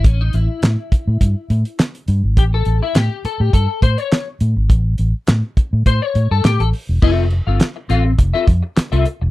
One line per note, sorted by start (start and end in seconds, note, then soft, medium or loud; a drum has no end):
0.04 0.28 A1 loud
0.04 0.21 C#4 medium
0.04 kick loud
0.04 closed hi-hat loud
0.21 0.34 D#4 medium
0.33 0.46 A1 loud
0.33 1.79 E4 medium
0.33 closed hi-hat medium
0.62 0.75 A2 medium
0.62 snare loud
0.62 clap medium
0.62 closed hi-hat medium
0.92 muted fingered electric bass stroke soft
0.92 kick medium
0.92 closed hi-hat medium
1.07 1.18 A2 loud
1.21 1.33 G2 medium
1.21 kick medium
1.21 closed hi-hat loud
1.50 1.63 A2 loud
1.50 closed hi-hat medium
1.65 closed hi-hat medium
1.79 snare loud
1.79 clap loud
1.79 closed hi-hat loud
1.95 closed hi-hat medium
2.08 2.21 G2 loud
2.08 closed hi-hat medium
2.24 2.35 G#1 medium
2.37 2.61 A1 loud
2.37 2.43 G4 medium
2.37 kick loud
2.37 closed hi-hat medium
2.54 2.82 A4 medium
2.65 2.79 A1 loud
2.65 closed hi-hat medium
2.83 2.96 E4 medium
2.95 3.08 A2 medium
2.95 3.25 G4 medium
2.95 snare loud
2.95 clap loud
2.95 closed hi-hat medium
3.25 3.41 A4 medium
3.25 muted fingered electric bass stroke soft
3.25 closed hi-hat medium
3.40 3.51 A2 medium
3.40 3.53 G4 medium
3.53 3.66 G2 medium
3.53 3.81 A4 loud
3.53 kick medium
3.53 closed hi-hat loud
3.82 3.95 A2 loud
3.82 3.98 C5 loud
3.82 kick medium
3.82 closed hi-hat medium
3.98 4.27 C#5 medium
3.98 closed hi-hat soft
4.12 snare loud
4.12 clap loud
4.12 closed hi-hat loud
4.40 4.53 A2 loud
4.40 closed hi-hat medium
4.56 4.67 G#1 medium
4.70 4.94 A1 loud
4.70 kick loud
4.70 closed hi-hat loud
4.98 5.12 A1 medium
4.98 closed hi-hat medium
5.27 5.41 A2 medium
5.27 snare loud
5.27 clap loud
5.27 closed hi-hat medium
5.57 muted fingered electric bass stroke soft
5.57 kick medium
5.57 closed hi-hat medium
5.73 5.84 A2 loud
5.86 5.99 A2 loud
5.86 6.02 C5 loud
5.86 kick medium
5.86 closed hi-hat loud
6.02 6.31 C#5 loud
6.15 6.28 A2 loud
6.15 closed hi-hat medium
6.31 6.42 G2 medium
6.31 6.45 A4 medium
6.45 6.57 A2 medium
6.45 6.61 G4 medium
6.45 snare loud
6.45 clap medium
6.45 closed hi-hat loud
6.60 6.71 A1 loud
6.60 6.68 A4 medium
6.60 closed hi-hat medium
6.73 open hi-hat medium
6.89 7.00 E1 medium
7.02 7.39 F1 loud
7.02 7.24 C4 medium
7.02 7.25 F4 loud
7.02 7.25 A4 loud
7.02 7.25 E5 medium
7.02 kick loud
7.02 crash medium
7.31 muted clean electric guitar stroke soft
7.31 closed hi-hat medium
7.47 7.58 G1 medium
7.47 7.64 C4 medium
7.47 7.64 F4 medium
7.47 7.63 A4 medium
7.47 7.63 F5 medium
7.60 snare loud
7.60 clap medium
7.60 closed hi-hat medium
7.76 muted clean electric guitar stroke medium
7.89 8.13 A1 loud
7.89 8.11 C4 medium
7.89 8.04 F4 medium
7.89 8.04 A4 medium
7.89 8.04 F5 loud
7.89 closed hi-hat medium
8.05 muted clean electric guitar stroke soft
8.18 8.31 F1 medium
8.18 muted clean electric guitar stroke soft
8.18 kick medium
8.18 closed hi-hat loud
8.34 8.46 C4 medium
8.34 8.46 F4 medium
8.34 8.47 A4 medium
8.34 8.47 E5 medium
8.47 8.60 F2 loud
8.47 muted clean electric guitar stroke soft
8.47 kick loud
8.47 closed hi-hat medium
8.63 muted clean electric guitar stroke soft
8.76 muted clean electric guitar stroke soft
8.76 muted fingered electric bass stroke soft
8.76 snare loud
8.76 clap loud
8.76 closed hi-hat loud
8.92 9.04 C2 loud
8.92 9.04 C4 medium
8.92 9.05 F4 medium
8.92 9.05 A4 medium
8.92 9.05 E5 medium
8.92 closed hi-hat soft
9.05 muted clean electric guitar stroke soft
9.05 closed hi-hat medium
9.21 9.30 E1 medium
9.21 muted clean electric guitar stroke soft